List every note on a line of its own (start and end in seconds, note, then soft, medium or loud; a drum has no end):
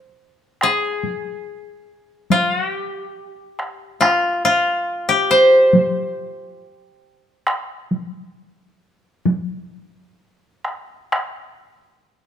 0.00 0.58 C5 medium
0.61 2.38 G#4 medium
0.61 taiko rim soft
1.03 taiko high soft
2.30 2.54 F4 medium
2.30 taiko high medium
2.54 2.68 F#4 medium
2.68 4.36 G4 medium
3.59 taiko rim soft
4.01 4.45 F4 medium
4.01 taiko rim soft
4.45 6.64 F4 medium
5.09 7.13 G4 medium
5.31 7.64 C5 medium
5.73 taiko high medium
7.47 taiko rim medium
7.64 7.94 B4 medium
7.91 8.24 A#4 medium
7.91 taiko high soft
8.24 8.55 A4 medium
8.55 10.14 G#4 medium
9.26 taiko high medium
10.65 taiko rim soft
11.12 taiko rim soft